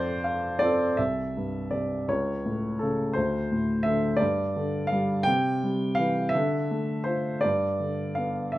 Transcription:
Already playing: F2 C4 F4 A4 C5 D5 F5
0.24 F5
0.59 C4 F4 A4 D5
0.97 C2 E5
1.37 G2
1.71 C3 D5
2.08 C#2 C#5
2.46 A2
2.79 C#3 A4
3.13 D2 C5
3.52 A2
3.83 D3 E5
4.17 G2 D5
4.56 D3
4.87 F5
4.92 G3
5.23 C3 G5
5.63 G3
5.95 F5
5.99 E3
6.29 E5
6.35 D3
6.71 A3
7.04 F4 C5
7.41 G2 D5
7.80 D3
8.15 B3 F5
8.52 D3 E5

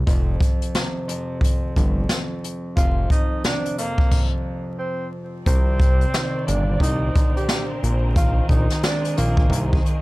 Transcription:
Already playing: C3
0.07 F1 F2, kick, closed hi-hat
0.40 kick, closed hi-hat
0.62 closed hi-hat
0.75 C3, snare, closed hi-hat
1.08 F2, closed hi-hat
1.41 F2, kick, closed hi-hat
1.76 G1 F2, kick, closed hi-hat
2.09 snare, closed hi-hat
2.44 closed hi-hat
2.76 F1 F2 F4, kick, closed hi-hat
3.10 D#4, kick, closed hi-hat
3.44 C3 D4, snare, closed hi-hat
3.66 closed hi-hat
3.78 F2 A#3, closed hi-hat
3.98 kick
4.11 kick, crash
4.79 C4
5.46 C2 C3 C4 A#4 C5 D5, kick, closed hi-hat
5.80 kick, closed hi-hat
6.01 closed hi-hat
6.13 D#3, snare, closed hi-hat
6.47 G1 A#2 D4, closed hi-hat
6.80 C2 D#4, kick, closed hi-hat
7.14 D3, kick, closed hi-hat
7.36 G4, closed hi-hat
7.49 snare, closed hi-hat
7.82 A#1 G#4, closed hi-hat
8.16 D#3 F4, kick, closed hi-hat
8.49 A#1 D#4, kick, closed hi-hat
8.70 snare, closed hi-hat
8.83 G#3 D4, snare, closed hi-hat
9.05 closed hi-hat
9.17 A#1 D#3 A#3, closed hi-hat
9.37 kick
9.50 C2 D#3, kick, closed hi-hat
9.73 kick
9.84 D#3, closed hi-hat

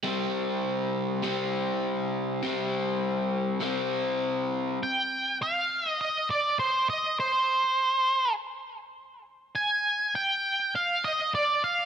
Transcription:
0.04 C3 G3 C4
1.22 C3 G3 C4
2.43 C3 G3 C4
3.61 C3 G3 C4
4.83 G5
5.42 F5
5.88 D#5
6.01 D#5
6.30 D5
6.59 C5
6.90 D#5
7.20 C5
9.55 G#5
10.15 G5
10.75 F5
11.04 D#5
11.35 D5
11.64 F5

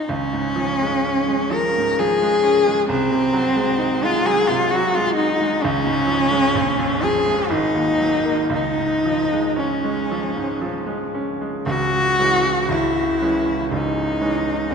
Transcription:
Already playing: D#4
0.09 C#2 C#4
0.33 G#2
0.56 F3
0.81 G#3
1.06 C#4
1.28 G#3
1.51 F3 A#4
1.77 G#2
1.99 F3 G#4
2.22 G#3
2.43 C#4
2.67 G#3
2.89 C2 C4
3.10 C3
3.33 F#3
3.56 G#3
3.78 D#4
4.03 G#3 F4
4.26 F#3 G#4
4.48 C3 F4
4.71 F#3 F#4
4.95 G#3 F4
5.16 D#4
5.41 G#3
5.62 C#2 C#4
5.86 G#2
6.07 F3
6.31 G#3
6.55 A#1
6.78 F2
7.03 F3 G#4
7.27 G#3
7.50 G#1 D#4
7.75 D#2
7.99 F#3
8.25 A#3
8.50 C#2 D#4
8.78 G#2
9.05 F3
9.32 G#3
9.56 C#4
9.84 G#3
10.11 F3
10.36 G#2
10.62 F3
10.86 G#3
11.15 C#4
11.41 G#3
11.66 C#1 C#2 F#4
12.19 E3 G#3 C#4
12.69 C#1 C#2 E4
13.21 E3 G#3 C#4
13.72 C#1 C#2 D#4
14.21 E3 G#3 C#4
14.70 E1 E2 C#4

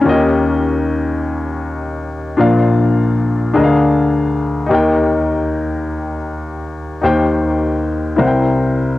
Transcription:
Already playing: G#5
0.01 D#3 C#4 F4
0.05 D#2 A#4 D#5
0.10 G4
2.37 A#1 A#2 D4 F4 A#4 F5
3.53 D2 D3 D4 G#4 A#4 D#5
3.64 F5
4.66 D#3 D#4 G4
4.71 D#2 A#4 G5
7.01 D#2 D#3 D#4 G4 C5
7.05 G5
8.16 C2 C3 E4 A#4 C5
8.20 F#5
8.27 G5

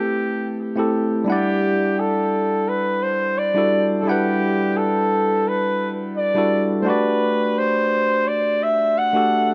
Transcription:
Already playing: A3 C4 E4 G4 B4
0.75 A3 C4 E4 G4 A4
1.24 G3 D4 E4
1.30 G4 D5 F#5
1.99 A4
2.69 B4
3.03 C5
3.38 D5
3.54 G3 D4 E4 F#4 A4
4.00 G3 A4
4.05 D4 E4 G4 F#5
4.11 B4
4.77 A4
5.48 B4
6.17 D5
6.34 G3 D4 E4 F#4 A4
6.81 A3 D4 C5
6.86 F#4 G4 B4 D5
7.58 C5
8.27 D5
8.63 E5
8.98 F#5
9.13 A3 D4 F#4 G4 A4

